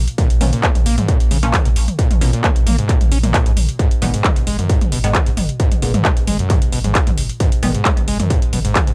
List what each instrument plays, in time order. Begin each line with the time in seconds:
0.08 closed hi-hat
0.18 acid bass A#2, kick, closed hi-hat, mid tom
0.30 sub bass A#1, closed hi-hat
0.41 sub bass A#1, acid bass B2, synth stab F3 A#3 C#4, mid tom, open hi-hat
0.53 acid bass A#2, closed hi-hat
0.63 acid bass A#3, kick, clap, closed hi-hat
0.75 sub bass A#1, closed hi-hat, mid tom
0.86 sub bass A#1, acid bass A#3, open hi-hat
0.98 acid bass G#2, closed hi-hat, mid tom
1.09 acid bass A#2, kick, closed hi-hat
1.20 sub bass A#1, closed hi-hat
1.31 sub bass A#1, acid bass C#3, mid tom, open hi-hat
1.43 sub bass A#1, acid bass A#2, synth stab F3 A#3 C#4, closed hi-hat
1.54 kick, clap, closed hi-hat, mid tom
1.66 sub bass A#1, acid bass A#2, closed hi-hat
1.76 sub bass A#1, open hi-hat
1.88 closed hi-hat, mid tom
1.99 acid bass A#2, kick, closed hi-hat
2.11 sub bass A#1, closed hi-hat, mid tom
2.21 sub bass A#1, acid bass B2, synth stab F3 A#3 C#4, open hi-hat
2.33 acid bass A#2, closed hi-hat
2.44 acid bass A#3, kick, clap, closed hi-hat, mid tom
2.56 sub bass A#1, closed hi-hat
2.66 sub bass A#1, acid bass A#3, mid tom, open hi-hat
2.78 acid bass G#2, closed hi-hat
2.89 acid bass A#2, kick, clap, closed hi-hat
3.01 sub bass A#1, closed hi-hat, mid tom
3.12 sub bass A#1, acid bass C#4, open hi-hat
3.23 sub bass A#1, acid bass A#2, closed hi-hat, mid tom
3.34 kick, clap, closed hi-hat
3.46 sub bass A#1, acid bass G#2, closed hi-hat
3.57 sub bass A#1, mid tom, open hi-hat
3.69 closed hi-hat
3.79 acid bass G#2, kick, closed hi-hat
3.91 sub bass G#1, closed hi-hat
4.02 sub bass G#1, acid bass A#2, synth stab D#3 G#3 B3, mid tom, open hi-hat
4.14 acid bass G#2, closed hi-hat
4.24 acid bass G#3, kick, clap, closed hi-hat, mid tom
4.36 sub bass G#1, closed hi-hat
4.47 sub bass G#1, acid bass G#3, open hi-hat
4.59 acid bass F#2, closed hi-hat, mid tom
4.70 acid bass G#2, kick, closed hi-hat
4.81 sub bass G#1, closed hi-hat, mid tom
4.92 sub bass G#1, acid bass B2, open hi-hat
5.04 sub bass G#1, acid bass G#2, synth stab D#3 G#3 B3, closed hi-hat
5.15 kick, clap, closed hi-hat, mid tom
5.26 sub bass G#1, acid bass G#2, closed hi-hat
5.37 sub bass G#1, mid tom, open hi-hat
5.49 closed hi-hat
5.60 acid bass G#2, kick, closed hi-hat
5.72 sub bass G#1, closed hi-hat, mid tom
5.82 sub bass G#1, acid bass A#2, synth stab D#3 G#3 B3, open hi-hat
5.94 acid bass G#2, closed hi-hat, mid tom
6.05 acid bass G#3, kick, clap, closed hi-hat
6.17 sub bass G#1, closed hi-hat
6.27 sub bass G#1, acid bass G#3, mid tom, open hi-hat
6.39 acid bass F#2, closed hi-hat
6.50 acid bass G#2, kick, clap, closed hi-hat, mid tom
6.62 sub bass G#1, closed hi-hat
6.72 sub bass G#1, acid bass B2, open hi-hat
6.84 sub bass G#1, acid bass G#2, closed hi-hat, mid tom
6.95 kick, clap, closed hi-hat
7.07 sub bass G#1, acid bass G#2, closed hi-hat, mid tom
7.17 sub bass G#1, open hi-hat
7.29 closed hi-hat
7.40 acid bass G#2, kick, closed hi-hat, mid tom
7.52 sub bass G#1, closed hi-hat
7.63 sub bass G#1, acid bass A#2, synth stab D#3 G#3 B3, mid tom, open hi-hat
7.74 acid bass G#2, closed hi-hat
7.85 acid bass G#3, kick, clap, closed hi-hat
7.97 sub bass G#1, closed hi-hat, mid tom
8.08 sub bass G#1, acid bass G#3, open hi-hat
8.20 acid bass F#2, closed hi-hat, mid tom
8.30 acid bass G#2, kick, closed hi-hat
8.42 sub bass G#1, closed hi-hat
8.53 sub bass G#1, acid bass B2, mid tom, open hi-hat
8.65 sub bass G#1, acid bass G#2, closed hi-hat
8.75 kick, clap, closed hi-hat, mid tom
8.87 sub bass G#1, acid bass G#2, closed hi-hat